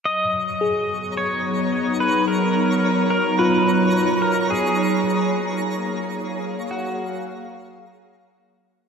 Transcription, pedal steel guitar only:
\new Staff \with { instrumentName = "Pedal steel guitar" } { \time 4/4 \key b \lydian \tempo 4 = 54 dis''4 cis''8. b'16 ais'8. ais'16 b'8. ais'16 | gis'2 fis'4 r4 | }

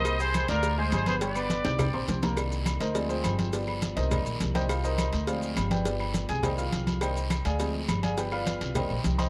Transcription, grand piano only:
<<
  \new Staff \with { instrumentName = "Grand piano" } { \time 4/4 \key c \minor \tempo 4 = 207 <bes bes' bes''>8 <g' g'' g'''>4 <d' d'' d'''>4 <aes aes' aes''>4 <b b' b''>8 | <g g' g''>8 <b b' b''>4 <g' g'' g'''>4 <c' c'' c'''>4 <bes bes' bes''>8 | r4. <ees' bes' c'' ees''>8 <d' f' aes' d''>8 <c' f' aes' c''>4. | <d' g' b' d''>4. <ees' bes' c'' ees''>4 r4 <g' c'' ees'' g''>8 |
<f' f''>8 <ees' bes' c'' ees''>4. <f' c'' d'' f''>4. <g' b' d'' g''>8~ | <g' b' d'' g''>8 r4 <aes' aes''>8 <g' c'' ees'' g''>8 <f' f''>4. | <g' c'' ees'' g''>4. <aes' d'' f'' aes''>4 r4 <aes' d'' f'' aes''>8 | <g' b' d'' g''>8 <f' b' d'' f''>4. <g' c'' ees'' g''>4. <c'' ees'' g'' c'''>8 | }
  \new Staff \with { instrumentName = "Grand piano" } { \time 4/4 \key c \minor r1 | r1 | <ees bes d'>4. r8 <f aes c'>2 | <f b>2 <ees bes d''>4. <ees bes d'>8 |
r2 <f aes c'>2 | <f b d'>4. r8 <ees bes d'>8 r4. | <ees bes d'>8 r4. <f aes c'>8 r4. | <f b d'>4. r8 <ees bes d'>8 r4. | }
>>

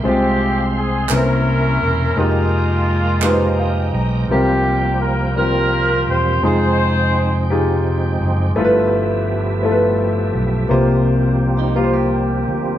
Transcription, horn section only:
\new Staff \with { instrumentName = "Horn section" } { \time 6/8 \key f \minor \tempo 4. = 56 << { g'4 aes'8 bes'4. | f'2~ f'8 r8 | g'4 bes'8 bes'4 c''8 | c''4. r4. |
r2. | r2. | } \\ { c'4. <des' e'>4. | <aes bes>2~ <aes bes>8 r8 | bes4. <f' g'>4. | <ees' aes'>4. r4. |
r2. | r2. | } >> }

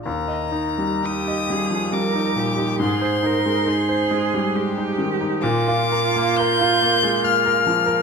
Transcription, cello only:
\new Staff \with { instrumentName = "Cello" } { \time 3/4 \key ees \major \tempo 4 = 69 r4 g'8 aes'8 bes'8 g'8 | aes'8 bes'8 aes'4 g'4 | f'2. | }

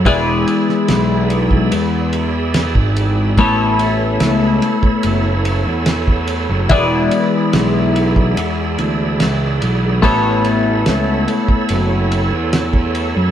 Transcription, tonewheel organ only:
\new Staff \with { instrumentName = "Tonewheel organ" } { \time 4/4 \key e \mixolydian \tempo 4 = 72 << { <b'' e'''>1~ | <b'' e'''>1~ | <b'' e'''>1~ | <b'' e'''>1 | } \\ { <gis' d''>1 | <a' cis''>1 | <gis' d''>1 | <a' cis''>1 | } >> }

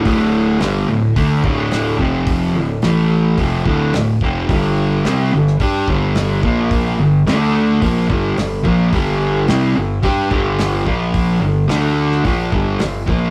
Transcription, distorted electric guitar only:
\new Staff \with { instrumentName = "Distorted electric guitar" } { \clef bass \time 4/4 \key d \minor \tempo 4 = 108 <d, a, d>4 <g, d g>8 <d, a,>8 <d a d'>8 <d, a, d>4 <f, c f>8~ | <f, c f>8 <d, a,>8 <a, e a>4 <f, c f>8 <d, a, d>8 <d, a,>8 <f, c f>8 | <g, d g>4 <c g c'>8 <g, d>8 <g d' g'>8 <g, d g>4 <bes, f bes>8~ | <bes, f bes>8 <g, d>8 <d a d'>4 <bes, f bes>8 <g, d g>8 <g, d>8 <bes, f bes>8 |
<g, d g>4 <c g c'>8 <g, d>8 <g d' g'>8 <g, d g>4 <bes, f bes>8~ | <bes, f bes>8 <g, d>8 <d a d'>4 <bes, f bes>8 <g, d g>8 <g, d>8 <bes, f bes>8 | }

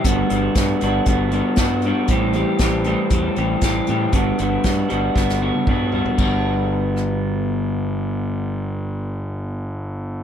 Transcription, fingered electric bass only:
\new Staff \with { instrumentName = "Fingered electric bass" } { \clef bass \time 4/4 \key g \major \tempo 4 = 117 g,,8 g,,8 g,8 g,,8 g,,4 g,4 | a,,4 a,,4 e,8 a,,8 a,,8 a,8 | g,,8 g,,8 g,8 g,,8 g,,4 g,4 | g,,1~ |
g,,1 | }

